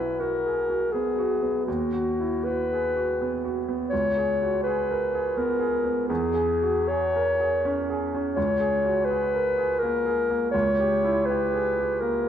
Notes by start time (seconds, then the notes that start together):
Already playing: B1 E4 F#4 B4
0.20 F#4 A#4
0.46 G#4
0.70 F#4
0.92 B3 G#4
1.18 F#4
1.42 B3
1.65 D#2 F#4
1.93 F#4
2.20 E4
2.45 F#4 B4
2.73 G#4
2.96 F#4
3.21 B3
3.44 F#4
3.68 B3
3.90 C#2 C#5
4.17 G#4
4.42 F#4
4.63 G#4 B4
4.91 A#4
5.14 G#4
5.37 B3 A#4
5.60 G#4
5.84 B3
6.08 E2 G#4
6.34 G#4
6.62 F#4
6.88 G#4 C#5
7.16 A#4
7.40 G#4
7.65 C#4
7.90 G#4
8.14 C#4
8.35 C#2 C#5
8.60 G#4
8.85 F#4
9.05 B4
9.10 G#4
9.35 A#4
9.57 G#4
9.79 A#3 A#4
10.06 G#4
10.30 A#3
10.51 C#2 C#5
10.79 G4
11.05 E4
11.26 G4 B4
11.54 G#4
11.80 G4
12.00 A#3 A#4